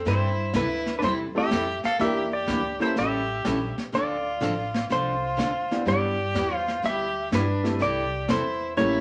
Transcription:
0.05 upright bass G2, steel-string acoustic guitar C3 E3 G3 C4 E4 A4, fiddle E4, electric slide guitar C5, brush sweep, snare
0.54 upright bass D2, steel-string acoustic guitar C3 E3 G3 C4 E4 A4, fiddle E4, electric slide guitar B4, snare, hi-hat pedal
0.86 snare
0.98 upright bass E2, steel-string acoustic guitar C3, fiddle D4, electric slide guitar B4, brush sweep, snare
1.02 steel-string acoustic guitar E3 G3 C4 E4 A4, fiddle E4, electric slide guitar C5
1.35 upright piano A3 C4 E4 G4 A4, fiddle G4, electric slide guitar E5
1.51 upright bass F2, steel-string acoustic guitar C3 E3 G3 C4 E4 A4, snare, hi-hat pedal
1.84 fiddle A4, electric slide guitar F5, muted upright bass stroke, snare
1.99 upright bass E2, steel-string acoustic guitar E3 A#3 D4 G4, upright piano A#3 D4 E4 G4 A#4, fiddle G4, electric slide guitar E5, brush sweep, snare
2.33 fiddle G4, electric slide guitar D5
2.47 upright bass D2, steel-string acoustic guitar E3 A#3 D4 G4, snare, hi-hat pedal
2.80 upright piano A#3 C#4 E4 G4 A4, fiddle E4, electric slide guitar C5, muted upright bass stroke, snare
2.96 upright bass A1, steel-string acoustic guitar E3 G3 C#4 E4 A4, fiddle G4, electric slide guitar E5, brush sweep, snare
3.45 upright bass A#1, steel-string acoustic guitar E3 G3 C#4 E4 A4, snare, hi-hat pedal
3.78 muted upright bass stroke, snare
3.92 upright bass D2, steel-string acoustic guitar D3 F3 C4 D4 A4, fiddle F4, electric slide guitar D5, brush sweep, snare
4.41 upright bass A1, steel-string acoustic guitar D3 F3 C4 D4 A4, snare, hi-hat pedal
4.74 snare
4.89 upright bass C2, steel-string acoustic guitar D3 F3 C4 D4 A4, fiddle F4, electric slide guitar C5, brush sweep, snare
5.37 upright bass D2, steel-string acoustic guitar D3 F3 C4 D4 A4, snare, hi-hat pedal
5.71 upright piano G3 B3 D4 E4 G4, snare
5.85 upright bass G2, steel-string acoustic guitar G3 B3 E4 G4, upright piano G3 B3 D4 E4 G4, fiddle G4, electric slide guitar D5, brush sweep, snare
6.34 upright bass E2, steel-string acoustic guitar G3 B3 E4 G4, snare, hi-hat pedal
6.53 fiddle F4
6.58 electric slide guitar C5
6.68 snare
6.82 upright bass D2, steel-string acoustic guitar G3 B3 E4 G4, fiddle G4, electric slide guitar E5, brush sweep, snare
7.31 upright bass G2, steel-string acoustic guitar G3 B3 E4 G4, fiddle D4, electric slide guitar B4, snare, hi-hat pedal
7.63 upright piano G3 A3 C4 E4 A4, snare
7.79 upright bass C2, steel-string acoustic guitar C3 E3 G3 C4 E4 A4, fiddle G4, electric slide guitar D5, brush sweep, snare
8.28 upright bass E2, steel-string acoustic guitar C3 E3 G3 C4 E4 A4, fiddle E4, electric slide guitar C5, snare, hi-hat pedal
8.77 upright bass A1, steel-string acoustic guitar E3 G3 C#4 E4 A4, upright piano A3 A#3 C#4 E4 G4, fiddle E4, electric slide guitar C#5, brush sweep, snare

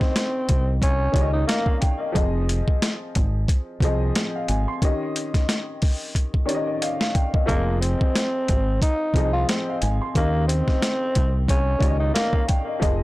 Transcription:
Already playing: grand piano C#3 D#3 G4 D#5, tenor saxophone C4
0.01 kick, snare
0.16 snare, closed hi-hat
0.49 fingered electric bass C2, kick, closed hi-hat
0.82 tenor saxophone C#4, kick, closed hi-hat
1.12 fingered electric bass C#2, grand piano D#3 C#4 G4 C#5 D5, kick, closed hi-hat
1.21 grand piano D#5
1.33 tenor saxophone D#4, grand piano D#5
1.47 tenor saxophone A#3, grand piano D#5 F5, snare, closed hi-hat
1.66 grand piano F5, kick
1.81 grand piano G5, kick, closed hi-hat
2.00 grand piano D#5
2.12 fingered electric bass F1, grand piano F3 C4 G#4 D#5, kick, closed hi-hat
2.49 closed hi-hat
2.68 kick
2.82 snare, closed hi-hat
3.15 fingered electric bass G#1, kick, closed hi-hat
3.48 kick, closed hi-hat
3.80 fingered electric bass C2, grand piano F3 C4 G#4, kick, closed hi-hat
3.85 grand piano D#5
4.15 snare, closed hi-hat
4.36 grand piano F5
4.48 fingered electric bass G#1, grand piano G#5, closed hi-hat
4.68 grand piano C6
4.82 grand piano D#3 C#4 G4 D#5, kick, closed hi-hat
5.16 closed hi-hat
5.34 kick, snare, closed hi-hat
5.49 snare, closed hi-hat
5.82 kick, open hi-hat
6.15 kick, closed hi-hat
6.34 kick
6.45 grand piano D#3 C#4 G4 C#5 D5, closed hi-hat
6.55 grand piano D#5
6.67 grand piano D#5
6.82 grand piano D#5 F5, closed hi-hat
7.00 grand piano F5, snare
7.14 grand piano G5, kick, closed hi-hat
7.34 grand piano D#5, kick
7.46 fingered electric bass F1, grand piano F3 C4 G#4 D#5, tenor saxophone A#3, kick, closed hi-hat
7.81 tenor saxophone C4, closed hi-hat
8.01 kick
8.16 snare, closed hi-hat
8.48 fingered electric bass G#1, kick, closed hi-hat
8.82 tenor saxophone D#4, kick, closed hi-hat
9.14 fingered electric bass C2, grand piano F3 C4 G#4, kick, closed hi-hat
9.18 grand piano D#5
9.33 tenor saxophone F4
9.49 tenor saxophone C4, snare, closed hi-hat
9.69 grand piano F5
9.81 fingered electric bass G#1, grand piano G#5, closed hi-hat
10.01 grand piano C6
10.15 fingered electric bass D#2, grand piano C#3 D#3 G4 D#5, tenor saxophone A#3, kick, closed hi-hat
10.48 tenor saxophone C4, closed hi-hat
10.68 kick, snare
10.82 snare, closed hi-hat
11.15 fingered electric bass C2, kick, closed hi-hat
11.48 tenor saxophone C#4, kick, closed hi-hat
11.79 fingered electric bass C#2, grand piano D#3 C#4 G4 C#5 D5, kick, closed hi-hat
11.88 grand piano D#5
12.00 tenor saxophone D#4, grand piano D#5
12.14 tenor saxophone A#3, grand piano D#5 F5, snare, closed hi-hat
12.33 grand piano F5, kick
12.48 grand piano G5, kick, closed hi-hat
12.67 grand piano D#5
12.80 fingered electric bass F1, grand piano F3 C4 G#4 D#5, kick, closed hi-hat

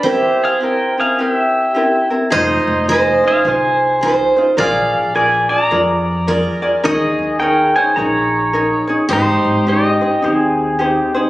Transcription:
0.03 ukulele C4 E4 G4 A#4, steel-string acoustic guitar C5
0.09 pedal steel guitar G4 E5
0.44 pedal steel guitar G#4 F5
0.60 ukulele C4 E4 G4 A#4, pedal steel guitar A#4
0.65 pedal steel guitar G5
0.97 ukulele C4 E4 A#4, pedal steel guitar G#4 F5
1.18 ukulele C4 E4 G4 A#4, pedal steel guitar G4 F5
1.33 pedal steel guitar E5
1.74 ukulele C4 E4 G4 A#4
2.10 ukulele C4 E4 A#4
2.30 upright bass F1, ukulele D#4 F4 G#4 C5, pedal steel guitar D#4 C5, steel-string acoustic guitar D#5
2.67 upright bass F1
2.88 ukulele D#4 F4 G#4 C5, steel-string acoustic guitar C5, pedal steel guitar D#5
2.93 pedal steel guitar G#4
3.23 ukulele D#4 F4 C5
3.28 pedal steel guitar G#4 F5
3.45 upright bass C2, ukulele D#4 F4 G#4 C5, pedal steel guitar C5 G#5
4.01 ukulele D#4 F4 G#4 C5, steel-string acoustic guitar C5
4.36 ukulele D#4 F4 C5
4.57 upright bass A#1, ukulele F4 G#4 A#4 D5, pedal steel guitar G#4 F5, steel-string acoustic guitar D5
4.93 upright bass A#1
5.15 ukulele F4 G#4 A#4 D5, pedal steel guitar D5 G#5
5.49 ukulele F4 G#4 D5, pedal steel guitar D5 A#5
5.70 upright bass F2, ukulele F4 G#4 A#4 D5
6.27 ukulele F4 G#4 A#4 D5, steel-string acoustic guitar A#4
6.62 ukulele F4 G#4 D5
6.84 upright bass D#2, ukulele D#4 G#4 A#4 C#5, steel-string acoustic guitar G#4, pedal steel guitar G#4 D#5
7.19 upright bass D#2
7.40 ukulele D#4 G#4 A#4 C#5, pedal steel guitar A#4 G5
7.76 ukulele D#4 G#4 C#5, pedal steel guitar C5 G#5
7.96 upright bass A#1, ukulele D#4 G#4 A#4 C#5, pedal steel guitar C#5 A#5
8.53 ukulele D#4 G#4 A#4 C#5
8.87 ukulele D#4 G#4 C#5
9.09 upright bass G#1, ukulele D#4 G4 C5, steel-string acoustic guitar G4
9.13 pedal steel guitar D#4 C5
9.45 upright bass G#1
9.67 ukulele D#4 G4 G#4 C5, pedal steel guitar G4 D#5
10.01 ukulele D#4 G#4 C5
10.22 upright bass D#2, pedal steel guitar C4 G#4, ukulele D#4 C5
10.79 ukulele D#4 G4 G#4 C5
10.85 pedal steel guitar G4
11.15 ukulele D#4 G#4 C5

